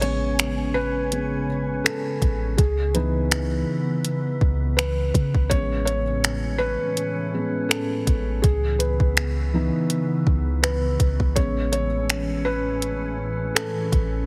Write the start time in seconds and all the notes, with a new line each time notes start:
Already playing: A1 C#3 C#4 G#5
0.00 G#3 B3 C#4 C#5, closed hi-hat
0.39 finger snap, closed hi-hat
0.74 B4
1.12 G#3 B3 C#4, closed hi-hat
1.84 A4, finger snap, closed hi-hat
2.22 A1, kick, closed hi-hat
2.57 C#2 E3 B3 G#4, kick, closed hi-hat
2.94 E3 B3 D#4 B4, closed hi-hat
3.31 finger snap, closed hi-hat
4.05 closed hi-hat
4.41 C#2, kick
4.77 B4, finger snap, closed hi-hat
5.14 C#3, kick, closed hi-hat
5.35 C#2, kick
5.50 A1 A2 E3 G#3 B3 C#4 C#5, kick, closed hi-hat
5.85 C#5, closed hi-hat
6.24 finger snap, closed hi-hat
6.58 B4
6.97 closed hi-hat
7.34 G#3 B3 C#4
7.69 A4, finger snap, closed hi-hat
8.07 A1, kick, closed hi-hat
8.42 C#2 C#3 E3 B3 G#4, kick, closed hi-hat
8.79 B4, closed hi-hat
9.00 C#2, kick
9.17 finger snap, closed hi-hat
9.54 E3 B3 D#4
9.90 closed hi-hat
10.27 C#2, kick
10.63 B4, finger snap, closed hi-hat
11.00 C#2, kick, closed hi-hat
11.20 C#2, kick
11.36 A1 A2 E3 G#3 B3 C#4 C#5, kick, closed hi-hat
11.72 C#5, closed hi-hat
12.10 finger snap, closed hi-hat
12.45 B4
12.82 closed hi-hat
13.55 A4, finger snap, closed hi-hat
13.92 A1, kick, closed hi-hat